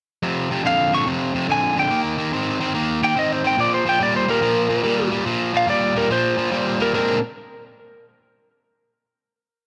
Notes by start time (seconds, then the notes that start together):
0.23 F2 C3
0.50 F2 C3
0.64 F2 D3 F5
0.92 F2 D3 C#6
1.06 F2 C3
1.34 F2 C3
1.48 F2 D3 G#5
1.76 F2 D3 G5
1.90 D#3 A#3
2.18 D#3 A#3
2.33 D#3 C4
2.60 D#3 C4
2.74 D#3 A#3
3.02 D#3 A#3 G5
3.16 D#3 C4 D#5
3.32 C5
3.44 D#3 C4 G5
3.57 A#2 F3 D5
3.74 C5
3.86 A#2 F3 G5
4.00 A#2 G3 D5
4.16 C5
4.28 A#2 G3 A#4
4.41 A#2 F3
4.69 A#2 F3
4.83 A#2 G3
5.11 A#2 G3
5.25 A#2 F3
5.54 A#2 F3 F5
5.67 A#2 G3 D5
5.95 A#2 G3 A#4
6.10 A#2 F3 C5
6.37 A#2 F3
6.51 A#2 G3
6.80 A#2 G3 A#4
6.93 A#2 G#3 C4 D4 A#4